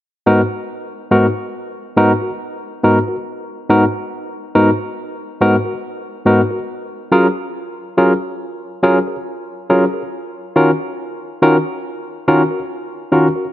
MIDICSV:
0, 0, Header, 1, 2, 480
1, 0, Start_track
1, 0, Tempo, 858369
1, 1822, Time_signature, 4, 2, 24, 8
1, 7564, End_track
2, 0, Start_track
2, 0, Title_t, "Tine electric piano"
2, 0, Program_c, 0, 4
2, 147, Note_on_c, 0, 59, 78
2, 148, Note_on_c, 0, 44, 84
2, 149, Note_on_c, 0, 63, 81
2, 150, Note_on_c, 0, 66, 71
2, 151, Note_on_c, 0, 70, 90
2, 225, Note_off_c, 0, 44, 0
2, 225, Note_off_c, 0, 59, 0
2, 226, Note_off_c, 0, 63, 0
2, 227, Note_off_c, 0, 66, 0
2, 227, Note_off_c, 0, 70, 0
2, 621, Note_on_c, 0, 44, 83
2, 621, Note_on_c, 0, 59, 75
2, 622, Note_on_c, 0, 63, 73
2, 624, Note_on_c, 0, 66, 83
2, 624, Note_on_c, 0, 70, 83
2, 702, Note_off_c, 0, 44, 0
2, 702, Note_off_c, 0, 59, 0
2, 703, Note_off_c, 0, 63, 0
2, 703, Note_off_c, 0, 66, 0
2, 704, Note_off_c, 0, 70, 0
2, 1100, Note_on_c, 0, 59, 77
2, 1102, Note_on_c, 0, 44, 79
2, 1102, Note_on_c, 0, 63, 79
2, 1104, Note_on_c, 0, 66, 77
2, 1104, Note_on_c, 0, 70, 89
2, 1181, Note_off_c, 0, 59, 0
2, 1182, Note_off_c, 0, 44, 0
2, 1182, Note_off_c, 0, 63, 0
2, 1183, Note_off_c, 0, 66, 0
2, 1183, Note_off_c, 0, 70, 0
2, 1239, Note_on_c, 0, 70, 41
2, 1240, Note_on_c, 0, 66, 41
2, 1280, Note_off_c, 0, 70, 0
2, 1281, Note_off_c, 0, 66, 0
2, 1586, Note_on_c, 0, 44, 75
2, 1586, Note_on_c, 0, 59, 72
2, 1587, Note_on_c, 0, 63, 69
2, 1589, Note_on_c, 0, 66, 70
2, 1590, Note_on_c, 0, 70, 91
2, 1664, Note_off_c, 0, 44, 0
2, 1664, Note_off_c, 0, 59, 0
2, 1665, Note_off_c, 0, 63, 0
2, 1666, Note_off_c, 0, 66, 0
2, 1666, Note_off_c, 0, 70, 0
2, 1723, Note_on_c, 0, 70, 45
2, 1724, Note_on_c, 0, 66, 41
2, 1762, Note_off_c, 0, 66, 0
2, 1762, Note_off_c, 0, 70, 0
2, 2067, Note_on_c, 0, 44, 86
2, 2067, Note_on_c, 0, 59, 83
2, 2067, Note_on_c, 0, 63, 76
2, 2069, Note_on_c, 0, 70, 95
2, 2071, Note_on_c, 0, 66, 80
2, 2145, Note_off_c, 0, 44, 0
2, 2145, Note_off_c, 0, 59, 0
2, 2145, Note_off_c, 0, 63, 0
2, 2146, Note_off_c, 0, 66, 0
2, 2146, Note_off_c, 0, 70, 0
2, 2544, Note_on_c, 0, 44, 84
2, 2546, Note_on_c, 0, 59, 78
2, 2546, Note_on_c, 0, 63, 76
2, 2546, Note_on_c, 0, 70, 94
2, 2547, Note_on_c, 0, 66, 77
2, 2623, Note_off_c, 0, 44, 0
2, 2624, Note_off_c, 0, 59, 0
2, 2624, Note_off_c, 0, 63, 0
2, 2624, Note_off_c, 0, 70, 0
2, 2625, Note_off_c, 0, 66, 0
2, 3024, Note_on_c, 0, 44, 91
2, 3026, Note_on_c, 0, 59, 81
2, 3026, Note_on_c, 0, 63, 79
2, 3027, Note_on_c, 0, 66, 80
2, 3029, Note_on_c, 0, 70, 92
2, 3103, Note_off_c, 0, 44, 0
2, 3104, Note_off_c, 0, 59, 0
2, 3104, Note_off_c, 0, 63, 0
2, 3104, Note_off_c, 0, 66, 0
2, 3105, Note_off_c, 0, 70, 0
2, 3158, Note_on_c, 0, 66, 36
2, 3158, Note_on_c, 0, 70, 43
2, 3199, Note_off_c, 0, 66, 0
2, 3199, Note_off_c, 0, 70, 0
2, 3498, Note_on_c, 0, 44, 78
2, 3499, Note_on_c, 0, 59, 75
2, 3501, Note_on_c, 0, 66, 75
2, 3502, Note_on_c, 0, 63, 74
2, 3504, Note_on_c, 0, 70, 86
2, 3580, Note_off_c, 0, 44, 0
2, 3581, Note_off_c, 0, 59, 0
2, 3581, Note_off_c, 0, 66, 0
2, 3582, Note_off_c, 0, 63, 0
2, 3583, Note_off_c, 0, 70, 0
2, 3638, Note_on_c, 0, 70, 46
2, 3640, Note_on_c, 0, 66, 39
2, 3679, Note_off_c, 0, 70, 0
2, 3680, Note_off_c, 0, 66, 0
2, 3980, Note_on_c, 0, 54, 86
2, 3980, Note_on_c, 0, 61, 81
2, 3982, Note_on_c, 0, 65, 77
2, 3983, Note_on_c, 0, 70, 101
2, 3984, Note_on_c, 0, 68, 78
2, 4060, Note_off_c, 0, 54, 0
2, 4061, Note_off_c, 0, 61, 0
2, 4062, Note_off_c, 0, 65, 0
2, 4062, Note_off_c, 0, 70, 0
2, 4063, Note_off_c, 0, 68, 0
2, 4458, Note_on_c, 0, 54, 80
2, 4460, Note_on_c, 0, 61, 77
2, 4461, Note_on_c, 0, 65, 77
2, 4462, Note_on_c, 0, 70, 91
2, 4463, Note_on_c, 0, 68, 74
2, 4540, Note_off_c, 0, 54, 0
2, 4541, Note_off_c, 0, 61, 0
2, 4541, Note_off_c, 0, 65, 0
2, 4542, Note_off_c, 0, 68, 0
2, 4542, Note_off_c, 0, 70, 0
2, 4937, Note_on_c, 0, 54, 84
2, 4938, Note_on_c, 0, 61, 81
2, 4939, Note_on_c, 0, 65, 80
2, 4939, Note_on_c, 0, 68, 79
2, 4941, Note_on_c, 0, 70, 95
2, 5019, Note_off_c, 0, 54, 0
2, 5020, Note_off_c, 0, 61, 0
2, 5020, Note_off_c, 0, 65, 0
2, 5020, Note_off_c, 0, 68, 0
2, 5021, Note_off_c, 0, 70, 0
2, 5075, Note_on_c, 0, 70, 44
2, 5076, Note_on_c, 0, 68, 39
2, 5117, Note_off_c, 0, 70, 0
2, 5118, Note_off_c, 0, 68, 0
2, 5421, Note_on_c, 0, 54, 78
2, 5424, Note_on_c, 0, 61, 77
2, 5424, Note_on_c, 0, 68, 74
2, 5424, Note_on_c, 0, 70, 91
2, 5425, Note_on_c, 0, 65, 75
2, 5501, Note_off_c, 0, 54, 0
2, 5502, Note_off_c, 0, 61, 0
2, 5502, Note_off_c, 0, 68, 0
2, 5503, Note_off_c, 0, 65, 0
2, 5503, Note_off_c, 0, 70, 0
2, 5556, Note_on_c, 0, 68, 38
2, 5557, Note_on_c, 0, 70, 43
2, 5598, Note_off_c, 0, 68, 0
2, 5598, Note_off_c, 0, 70, 0
2, 5904, Note_on_c, 0, 65, 81
2, 5905, Note_on_c, 0, 51, 82
2, 5906, Note_on_c, 0, 61, 78
2, 5906, Note_on_c, 0, 66, 77
2, 5908, Note_on_c, 0, 70, 93
2, 5983, Note_off_c, 0, 51, 0
2, 5983, Note_off_c, 0, 61, 0
2, 5983, Note_off_c, 0, 65, 0
2, 5983, Note_off_c, 0, 66, 0
2, 5985, Note_off_c, 0, 70, 0
2, 6386, Note_on_c, 0, 61, 73
2, 6387, Note_on_c, 0, 51, 90
2, 6388, Note_on_c, 0, 65, 70
2, 6389, Note_on_c, 0, 66, 77
2, 6389, Note_on_c, 0, 70, 97
2, 6464, Note_off_c, 0, 51, 0
2, 6464, Note_off_c, 0, 61, 0
2, 6465, Note_off_c, 0, 65, 0
2, 6465, Note_off_c, 0, 66, 0
2, 6465, Note_off_c, 0, 70, 0
2, 6866, Note_on_c, 0, 51, 88
2, 6866, Note_on_c, 0, 61, 80
2, 6866, Note_on_c, 0, 65, 77
2, 6867, Note_on_c, 0, 66, 76
2, 6867, Note_on_c, 0, 70, 95
2, 6944, Note_off_c, 0, 51, 0
2, 6944, Note_off_c, 0, 61, 0
2, 6944, Note_off_c, 0, 65, 0
2, 6944, Note_off_c, 0, 66, 0
2, 6944, Note_off_c, 0, 70, 0
2, 6995, Note_on_c, 0, 66, 39
2, 6995, Note_on_c, 0, 70, 44
2, 7037, Note_off_c, 0, 66, 0
2, 7037, Note_off_c, 0, 70, 0
2, 7337, Note_on_c, 0, 61, 69
2, 7338, Note_on_c, 0, 51, 72
2, 7338, Note_on_c, 0, 70, 82
2, 7339, Note_on_c, 0, 65, 72
2, 7339, Note_on_c, 0, 66, 76
2, 7419, Note_off_c, 0, 61, 0
2, 7420, Note_off_c, 0, 51, 0
2, 7420, Note_off_c, 0, 66, 0
2, 7420, Note_off_c, 0, 70, 0
2, 7421, Note_off_c, 0, 65, 0
2, 7469, Note_on_c, 0, 66, 36
2, 7470, Note_on_c, 0, 70, 43
2, 7514, Note_off_c, 0, 66, 0
2, 7515, Note_off_c, 0, 70, 0
2, 7564, End_track
0, 0, End_of_file